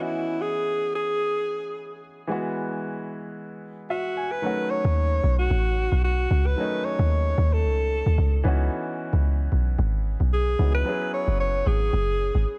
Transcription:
0.00 1.97 E3 medium
0.00 1.98 B3 medium
0.00 1.98 C#4 medium
0.00 0.43 E4 medium
0.00 1.99 F#4 medium
0.00 1.99 D#5 medium
0.42 0.95 G#4 loud
0.95 1.98 G#4 loud
2.27 4.38 E3 medium
2.27 4.39 G#3 medium
2.27 4.40 B3 medium
2.32 4.40 F#4 medium
3.90 4.33 F#4 medium
3.90 4.15 E5 medium
4.17 4.42 G#5 medium
4.32 4.72 B4 loud
4.42 6.53 D#3 medium
4.42 6.53 F#3 medium
4.42 6.54 A3 medium
4.42 6.54 C#4 medium
4.46 6.55 F#4 medium
4.71 5.38 C#5 loud
4.85 5.20 D#2 loud
5.24 5.48 B1 loud
5.39 6.00 F#4 loud
5.50 5.88 A1 loud
5.92 6.27 B1 medium
6.04 6.48 F#4 loud
6.31 6.55 C#2 loud
6.46 6.86 B4 loud
6.56 8.40 D#3 medium
6.56 8.41 F#3 medium
6.56 8.42 A3 medium
6.56 8.42 C#4 medium
6.60 8.43 D#4 medium
6.85 7.55 C#5 loud
6.99 7.34 D#2 loud
7.38 7.66 D#2 loud
7.53 8.45 A4 loud
7.64 8.02 C#2 loud
8.06 8.17 D#2 medium
8.18 8.42 C#2 loud
8.43 8.69 C#2 loud
8.43 10.54 E3 medium
8.43 10.55 B3 medium
8.43 10.55 C#4 medium
8.43 10.56 D#4 medium
8.48 10.57 F#4 medium
9.13 9.48 C#2 loud
9.52 9.76 B1 medium
9.79 10.17 G#1 loud
10.20 10.56 B1 medium
10.33 10.71 G#4 loud
10.59 10.83 C#2 loud
10.59 10.86 E3 medium
10.59 10.84 B3 soft
10.59 10.85 C#4 soft
10.59 10.87 D#4 soft
10.59 10.87 F#4 medium
10.75 11.10 B4 loud
10.85 12.59 F#3 medium
10.85 12.59 B3 medium
10.85 12.59 C#4 medium
10.85 12.59 E4 medium
10.89 12.59 G#4 medium
11.14 11.38 C#5 loud
11.27 11.63 F#1 medium
11.40 11.69 C#5 loud
11.66 11.91 G#1 loud
11.66 12.59 G#4 loud
11.93 12.31 F#1 loud
12.35 12.46 G#1 loud

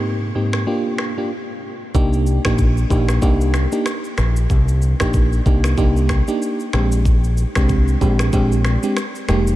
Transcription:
0.00 0.32 G#2 medium
0.00 0.32 A#3 medium
0.00 0.32 C4 medium
0.00 0.32 D#4 medium
0.00 0.32 G4 medium
0.35 0.65 G#2 medium
0.35 0.65 A#3 medium
0.35 0.65 C4 medium
0.35 0.65 D#4 medium
0.35 0.65 G4 medium
0.53 finger snap medium
0.53 cross-stick medium
0.67 1.13 A#3 medium
0.67 1.13 D4 medium
0.67 1.13 F4 medium
0.67 1.13 G4 medium
0.98 finger snap medium
0.98 cross-stick medium
1.17 1.31 A#3 medium
1.17 1.31 D4 medium
1.17 1.31 F4 medium
1.17 1.31 G4 medium
1.95 2.37 C2 loud
1.95 2.41 A#3 medium
1.95 2.41 D4 medium
1.95 2.41 D#4 medium
1.95 2.41 G4 loud
1.95 kick loud
1.95 shaker medium
2.13 shaker medium
2.27 shaker medium
2.45 2.84 A#1 medium
2.45 2.87 A#3 medium
2.45 2.87 D4 medium
2.45 2.87 D#4 medium
2.45 2.87 G4 medium
2.45 finger snap loud
2.45 kick medium
2.45 cross-stick loud
2.45 shaker medium
2.58 kick medium
2.58 shaker medium
2.77 shaker medium
2.90 3.18 A#1 medium
2.90 3.20 A#3 medium
2.90 3.20 D4 medium
2.90 3.20 D#4 medium
2.90 3.20 G4 medium
2.90 kick medium
2.90 shaker medium
3.09 finger snap medium
3.09 cross-stick medium
3.09 shaker medium
3.22 3.65 C2 loud
3.22 3.68 A#3 medium
3.22 3.68 D4 medium
3.22 3.68 D#4 medium
3.22 3.68 G4 loud
3.22 kick medium
3.22 shaker medium
3.41 shaker medium
3.54 finger snap medium
3.54 cross-stick medium
3.54 shaker medium
3.72 3.87 A#3 medium
3.72 3.87 D4 medium
3.72 3.87 D#4 medium
3.72 3.88 G4 medium
3.72 shaker medium
3.86 finger snap medium
3.86 cross-stick medium
3.86 shaker medium
4.04 shaker soft
4.18 4.45 A#1 medium
4.18 finger snap medium
4.18 cross-stick medium
4.18 shaker soft
4.36 shaker loud
4.50 4.93 C2 medium
4.50 kick loud
4.50 shaker medium
4.68 shaker medium
4.82 shaker medium
5.00 5.39 A#1 medium
5.00 5.42 A#3 medium
5.00 5.42 D4 medium
5.00 5.43 D#4 medium
5.00 5.43 G4 medium
5.00 finger snap loud
5.00 kick medium
5.00 cross-stick loud
5.00 shaker medium
5.13 kick medium
5.13 shaker medium
5.33 shaker medium
5.46 5.73 C2 medium
5.46 5.75 A#3 medium
5.46 5.76 D4 medium
5.46 5.76 D#4 medium
5.46 5.76 G4 medium
5.46 kick medium
5.46 shaker medium
5.64 finger snap medium
5.64 cross-stick medium
5.64 shaker medium
5.77 6.21 C2 loud
5.77 6.24 A#3 medium
5.77 6.24 D4 medium
5.77 6.24 D#4 medium
5.77 6.24 G4 loud
5.77 kick medium
5.77 shaker medium
5.97 shaker medium
6.09 finger snap medium
6.09 kick medium
6.09 cross-stick medium
6.09 shaker medium
6.28 6.70 A#3 medium
6.28 6.70 D4 medium
6.28 6.70 D#4 medium
6.28 6.70 G4 medium
6.28 shaker medium
6.42 shaker medium
6.60 shaker soft
6.73 7.43 A#1 loud
6.73 7.03 G#3 medium
6.73 7.03 C4 medium
6.73 7.03 D4 medium
6.73 7.04 G4 medium
6.73 finger snap medium
6.73 cross-stick medium
6.73 shaker soft
6.92 shaker loud
7.05 kick loud
7.05 shaker medium
7.24 shaker medium
7.37 shaker medium
7.55 7.94 C2 medium
7.55 7.98 G#3 medium
7.55 7.98 C4 medium
7.55 7.98 D4 medium
7.55 7.98 G4 medium
7.55 finger snap loud
7.55 kick medium
7.55 cross-stick loud
7.55 shaker medium
7.69 kick medium
7.69 shaker medium
7.88 shaker medium
8.01 8.28 A#1 loud
8.01 8.31 G#3 medium
8.01 8.31 C4 medium
8.01 8.31 D4 medium
8.01 8.31 G4 medium
8.01 kick medium
8.01 shaker medium
8.19 finger snap medium
8.19 cross-stick medium
8.19 shaker medium
8.33 8.76 A#1 loud
8.33 8.79 G#3 medium
8.33 8.79 C4 medium
8.33 8.79 D4 medium
8.33 8.79 G4 loud
8.33 kick medium
8.33 shaker medium
8.52 shaker medium
8.65 finger snap medium
8.65 cross-stick medium
8.65 shaker medium
8.83 8.98 G#3 medium
8.83 8.98 C4 medium
8.83 8.98 D4 medium
8.83 8.98 G4 medium
8.83 shaker medium
8.97 finger snap medium
8.97 cross-stick medium
8.97 shaker medium
9.15 shaker soft
9.28 9.56 F1 loud
9.28 9.56 G#3 medium
9.28 9.56 A#3 medium
9.28 9.56 D#4 medium
9.28 9.56 G4 loud
9.28 finger snap medium
9.28 cross-stick medium
9.28 shaker soft
9.47 shaker loud

